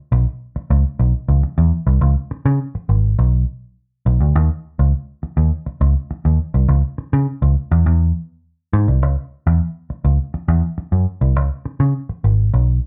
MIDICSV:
0, 0, Header, 1, 3, 480
1, 0, Start_track
1, 0, Tempo, 583658
1, 1660, Time_signature, 4, 2, 24, 8
1, 10583, End_track
2, 0, Start_track
2, 0, Title_t, "Picked electric bass"
2, 0, Program_c, 0, 34
2, 99, Note_on_c, 0, 35, 98
2, 203, Note_off_c, 0, 35, 0
2, 580, Note_on_c, 0, 37, 92
2, 683, Note_off_c, 0, 37, 0
2, 818, Note_on_c, 0, 35, 88
2, 922, Note_off_c, 0, 35, 0
2, 1057, Note_on_c, 0, 37, 89
2, 1162, Note_off_c, 0, 37, 0
2, 1298, Note_on_c, 0, 40, 85
2, 1402, Note_off_c, 0, 40, 0
2, 1536, Note_on_c, 0, 36, 87
2, 1641, Note_off_c, 0, 36, 0
2, 1655, Note_on_c, 0, 37, 105
2, 1761, Note_off_c, 0, 37, 0
2, 2018, Note_on_c, 0, 49, 101
2, 2122, Note_off_c, 0, 49, 0
2, 2377, Note_on_c, 0, 32, 89
2, 2585, Note_off_c, 0, 32, 0
2, 2621, Note_on_c, 0, 35, 91
2, 2827, Note_off_c, 0, 35, 0
2, 3338, Note_on_c, 0, 35, 87
2, 3442, Note_off_c, 0, 35, 0
2, 3457, Note_on_c, 0, 38, 77
2, 3562, Note_off_c, 0, 38, 0
2, 3580, Note_on_c, 0, 39, 96
2, 3683, Note_off_c, 0, 39, 0
2, 3940, Note_on_c, 0, 37, 91
2, 4044, Note_off_c, 0, 37, 0
2, 4415, Note_on_c, 0, 39, 84
2, 4521, Note_off_c, 0, 39, 0
2, 4777, Note_on_c, 0, 37, 96
2, 4882, Note_off_c, 0, 37, 0
2, 5140, Note_on_c, 0, 39, 75
2, 5244, Note_off_c, 0, 39, 0
2, 5381, Note_on_c, 0, 36, 82
2, 5484, Note_off_c, 0, 36, 0
2, 5499, Note_on_c, 0, 37, 99
2, 5603, Note_off_c, 0, 37, 0
2, 5865, Note_on_c, 0, 49, 94
2, 5967, Note_off_c, 0, 49, 0
2, 6103, Note_on_c, 0, 37, 93
2, 6206, Note_off_c, 0, 37, 0
2, 6345, Note_on_c, 0, 40, 88
2, 6447, Note_off_c, 0, 40, 0
2, 6466, Note_on_c, 0, 40, 92
2, 6670, Note_off_c, 0, 40, 0
2, 7183, Note_on_c, 0, 44, 96
2, 7286, Note_off_c, 0, 44, 0
2, 7303, Note_on_c, 0, 36, 76
2, 7422, Note_off_c, 0, 36, 0
2, 7422, Note_on_c, 0, 37, 107
2, 7525, Note_off_c, 0, 37, 0
2, 7785, Note_on_c, 0, 40, 93
2, 7887, Note_off_c, 0, 40, 0
2, 8262, Note_on_c, 0, 37, 88
2, 8365, Note_off_c, 0, 37, 0
2, 8623, Note_on_c, 0, 40, 96
2, 8726, Note_off_c, 0, 40, 0
2, 8983, Note_on_c, 0, 42, 81
2, 9086, Note_off_c, 0, 42, 0
2, 9222, Note_on_c, 0, 36, 92
2, 9345, Note_off_c, 0, 36, 0
2, 9345, Note_on_c, 0, 37, 106
2, 9447, Note_off_c, 0, 37, 0
2, 9706, Note_on_c, 0, 49, 91
2, 9808, Note_off_c, 0, 49, 0
2, 10070, Note_on_c, 0, 32, 85
2, 10274, Note_off_c, 0, 32, 0
2, 10311, Note_on_c, 0, 35, 95
2, 10515, Note_off_c, 0, 35, 0
2, 10583, End_track
3, 0, Start_track
3, 0, Title_t, "Muted picked electric bass strokes"
3, 460, Note_on_c, 9, 29, 46
3, 543, Note_off_c, 9, 29, 0
3, 1180, Note_on_c, 9, 29, 47
3, 1262, Note_off_c, 9, 29, 0
3, 1900, Note_on_c, 9, 29, 45
3, 1983, Note_off_c, 9, 29, 0
3, 2261, Note_on_c, 9, 29, 49
3, 2343, Note_off_c, 9, 29, 0
3, 4301, Note_on_c, 9, 29, 43
3, 4383, Note_off_c, 9, 29, 0
3, 4658, Note_on_c, 9, 29, 51
3, 4740, Note_off_c, 9, 29, 0
3, 5022, Note_on_c, 9, 29, 46
3, 5104, Note_off_c, 9, 29, 0
3, 5743, Note_on_c, 9, 29, 45
3, 5825, Note_off_c, 9, 29, 0
3, 8142, Note_on_c, 9, 29, 47
3, 8224, Note_off_c, 9, 29, 0
3, 8505, Note_on_c, 9, 29, 51
3, 8587, Note_off_c, 9, 29, 0
3, 8865, Note_on_c, 9, 29, 50
3, 8948, Note_off_c, 9, 29, 0
3, 9587, Note_on_c, 9, 29, 41
3, 9669, Note_off_c, 9, 29, 0
3, 9948, Note_on_c, 9, 29, 50
3, 10031, Note_off_c, 9, 29, 0
3, 10583, End_track
0, 0, End_of_file